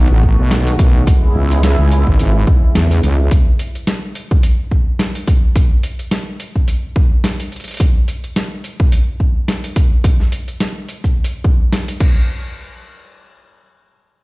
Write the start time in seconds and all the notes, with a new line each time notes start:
Already playing: D#3 A3 B3 F#4
0.11 A1
0.23 kick
0.39 B1
0.51 snare, closed hi-hat
0.67 closed hi-hat
0.79 B1, kick, closed hi-hat
1.07 C#3 G#3 E4, kick, closed hi-hat
1.35 C#2
1.51 closed hi-hat
1.63 snare, closed hi-hat
1.79 C#2
1.91 closed hi-hat
2.07 G#1, kick
2.19 closed hi-hat
2.47 kick
2.75 E2, snare, closed hi-hat
2.91 closed hi-hat
3.03 C#2, closed hi-hat
3.31 kick, closed hi-hat
3.59 closed hi-hat
3.75 closed hi-hat
3.87 snare, closed hi-hat
4.15 closed hi-hat
4.31 kick
4.43 closed hi-hat
4.71 kick
4.99 snare, closed hi-hat
5.15 closed hi-hat
5.27 kick, closed hi-hat
5.56 kick, closed hi-hat
5.83 closed hi-hat
5.99 closed hi-hat
6.11 snare, closed hi-hat
6.40 closed hi-hat
6.56 kick
6.68 closed hi-hat
6.96 kick
7.24 snare, closed hi-hat
7.40 closed hi-hat
7.52 closed hi-hat
7.56 closed hi-hat
7.60 closed hi-hat
7.64 closed hi-hat
7.68 closed hi-hat
7.71 closed hi-hat
7.74 closed hi-hat
7.77 kick, closed hi-hat
7.80 closed hi-hat
8.08 closed hi-hat
8.24 closed hi-hat
8.36 snare, closed hi-hat
8.64 closed hi-hat
8.80 kick
8.92 closed hi-hat
9.20 kick
9.48 snare, closed hi-hat
9.64 closed hi-hat
9.76 kick, closed hi-hat
10.04 kick, closed hi-hat
10.20 snare
10.32 closed hi-hat
10.48 closed hi-hat
10.60 snare, closed hi-hat
10.89 closed hi-hat
11.04 kick, closed hi-hat
11.24 closed hi-hat
11.44 kick
11.73 snare, closed hi-hat
11.88 closed hi-hat
12.00 kick, crash